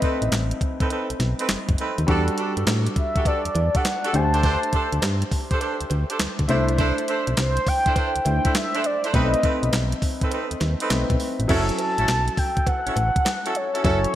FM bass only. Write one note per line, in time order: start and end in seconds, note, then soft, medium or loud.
0.22 0.29 A1 medium
0.32 0.53 A1 medium
1.10 1.14 B1 soft
1.20 1.34 B1 loud
1.49 1.57 F#1 soft
1.69 1.76 F#1 medium
1.98 2.06 D#2 medium
2.08 2.30 E2 medium
2.57 2.64 G2 medium
2.67 2.88 A2 medium
3.45 3.49 E2 soft
3.55 3.70 E2 loud
4.14 4.57 D2 loud
4.93 5.00 D2 medium
5.02 5.24 G2 loud
5.81 5.85 D2 medium
5.91 6.05 D2 medium
6.20 6.28 D2 soft
6.39 6.47 D2 medium
6.49 6.92 C2 loud
7.28 7.35 B1 medium
7.37 7.59 C2 loud
8.16 8.20 D2 soft
8.26 8.40 D2 loud
9.14 9.35 B1 loud
9.63 9.70 B1 medium
9.73 9.94 B1 loud
10.51 10.55 D#2 soft
10.61 10.75 D#2 medium
10.90 11.05 B1 medium
11.10 11.17 B1 medium
11.39 11.47 A1 medium
11.49 11.71 F#1 loud
11.98 12.06 A1 medium
12.08 12.30 B1 loud
12.87 12.91 A1 soft
12.96 13.11 A1 medium
13.85 14.06 F#1 loud